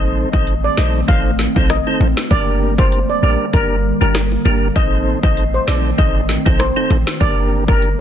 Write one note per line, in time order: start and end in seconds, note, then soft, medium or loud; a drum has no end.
0.00 0.25 A1 loud
0.00 2.29 D#3 medium
0.00 2.29 A3 medium
0.00 0.29 C4 medium
0.00 2.28 C4 medium
0.00 0.29 D#4 medium
0.00 0.29 A4 medium
0.00 0.30 C5 loud
0.33 0.70 A1 loud
0.33 0.54 C4 medium
0.33 0.54 D#4 medium
0.33 0.55 A4 medium
0.33 0.55 C5 medium
0.33 0.43 D#5 medium
0.33 kick loud
0.33 high bongo medium
0.47 closed hi-hat medium
0.64 0.73 D5 medium
0.77 1.03 A#1 loud
0.77 1.01 C4 medium
0.77 1.01 D#4 medium
0.77 1.01 A4 medium
0.77 1.01 C5 medium
0.77 0.89 D#5 medium
0.77 snare loud
1.08 1.48 A1 loud
1.08 1.31 C4 loud
1.08 1.31 D#4 medium
1.08 1.31 A4 medium
1.08 1.31 C5 loud
1.08 1.53 F5 medium
1.08 kick loud
1.08 closed hi-hat medium
1.39 snare medium
1.56 1.81 A#1 medium
1.56 1.77 C4 medium
1.56 1.77 D#4 medium
1.56 1.77 A4 medium
1.56 1.77 C5 medium
1.56 kick loud
1.56 high bongo medium
1.70 2.15 D#5 medium
1.70 cross-stick loud
1.70 closed hi-hat medium
1.70 high bongo medium
1.86 2.07 C4 medium
1.86 2.08 D#4 medium
1.86 2.08 A4 medium
1.86 2.08 C5 medium
1.86 high bongo soft
2.00 2.14 A1 medium
2.00 high bongo medium
2.00 low bongo medium
2.17 snare loud
2.30 3.05 G1 loud
2.30 4.73 D3 medium
2.30 4.73 G3 medium
2.30 4.73 A#3 medium
2.30 2.74 A#3 medium
2.30 2.74 D4 medium
2.30 2.74 G4 medium
2.30 2.75 A#4 loud
2.30 2.52 D5 loud
2.30 kick loud
2.30 closed hi-hat medium
2.30 high bongo medium
2.78 2.99 A#3 medium
2.78 2.99 D4 medium
2.78 3.00 G4 medium
2.78 3.00 A#4 medium
2.78 2.88 C5 medium
2.78 kick loud
2.78 high bongo medium
2.92 closed hi-hat medium
3.10 3.18 D5 medium
3.23 3.37 A1 loud
3.23 3.46 A#3 medium
3.23 3.46 D4 medium
3.23 3.46 G4 medium
3.23 3.46 A#4 medium
3.23 3.35 D5 medium
3.53 3.93 G1 loud
3.53 3.76 A#3 loud
3.53 3.76 D4 medium
3.53 3.76 G4 medium
3.53 3.65 A#4 medium
3.53 3.76 A#4 loud
3.53 kick loud
3.53 closed hi-hat medium
4.01 4.37 G1 loud
4.01 4.22 A#3 medium
4.01 4.22 D4 medium
4.01 4.22 G4 medium
4.01 4.22 A#4 medium
4.01 4.10 A#4 medium
4.01 high bongo medium
4.14 cross-stick loud
4.14 snare loud
4.14 closed hi-hat medium
4.14 high bongo medium
4.32 high bongo soft
4.45 4.70 G1 loud
4.45 4.68 A#3 medium
4.45 4.68 D4 medium
4.45 4.68 G4 medium
4.45 4.68 A#4 medium
4.45 high bongo medium
4.45 low bongo medium
4.76 5.15 A1 loud
4.76 7.18 D#3 medium
4.76 7.18 A3 medium
4.76 5.19 C4 loud
4.76 7.18 C4 medium
4.76 5.19 D#4 medium
4.76 5.19 A4 medium
4.76 5.20 C5 loud
4.76 4.97 D#5 loud
4.76 kick loud
4.76 closed hi-hat medium
4.76 high bongo medium
5.23 5.59 A1 loud
5.23 5.44 C4 medium
5.23 5.44 D#4 medium
5.23 5.44 A4 medium
5.23 5.45 C5 medium
5.23 5.33 D#5 medium
5.23 kick loud
5.23 high bongo medium
5.37 closed hi-hat medium
5.54 5.63 C5 medium
5.67 5.93 A#1 loud
5.67 5.90 C4 medium
5.67 5.91 D#4 medium
5.67 5.91 A4 medium
5.67 5.91 C5 medium
5.67 5.79 D5 medium
5.67 snare loud
5.98 6.37 A1 loud
5.98 6.21 C4 medium
5.98 6.21 D#4 medium
5.98 6.21 A4 medium
5.98 6.21 C5 loud
5.98 6.43 D#5 loud
5.98 kick loud
5.98 closed hi-hat medium
6.29 snare medium
6.46 6.71 A#1 loud
6.46 6.67 C4 medium
6.46 6.67 D#4 medium
6.46 6.67 A4 medium
6.46 6.67 C5 medium
6.46 kick loud
6.46 high bongo medium
6.59 7.04 C5 medium
6.59 cross-stick loud
6.59 closed hi-hat medium
6.59 high bongo medium
6.76 6.97 C4 medium
6.76 6.97 D#4 medium
6.76 6.97 A4 medium
6.76 6.98 C5 medium
6.76 high bongo soft
6.90 7.04 A1 medium
6.90 high bongo medium
6.90 low bongo medium
7.07 snare loud
7.20 7.95 G1 loud
7.20 8.01 D3 medium
7.20 8.01 G3 medium
7.20 7.64 A#3 loud
7.20 8.01 A#3 medium
7.20 7.64 D4 medium
7.20 7.64 G4 medium
7.20 7.64 A#4 loud
7.20 7.41 D5 loud
7.20 kick loud
7.20 closed hi-hat medium
7.20 high bongo medium
7.68 7.89 A#3 medium
7.68 7.89 D4 medium
7.68 7.89 G4 medium
7.68 7.78 A#4 medium
7.68 7.90 A#4 medium
7.68 kick loud
7.68 high bongo medium
7.82 closed hi-hat medium